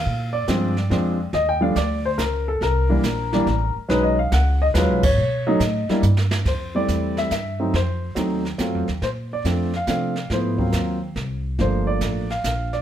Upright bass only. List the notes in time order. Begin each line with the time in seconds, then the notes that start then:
0.06 A#2
0.48 G2
0.90 F2
1.33 D#2
1.76 D2
2.18 C#2
2.61 C2
3.03 A#1
3.47 A1
3.76 muted upright bass stroke
3.89 B1
4.32 C#2
4.74 D#2
4.89 B1
5.03 G#1
5.18 B2
5.60 A2
5.89 muted upright bass stroke
6.03 G2
6.45 F2
6.88 E2
7.31 G2
7.73 F2
8.16 D#2
8.59 F#2
8.75 F2
8.89 D#2
9.02 A#2
9.44 F2
9.87 C3
10.30 G#2
10.73 D#2
11.16 C2
11.59 G1
12.01 A1
12.44 A#1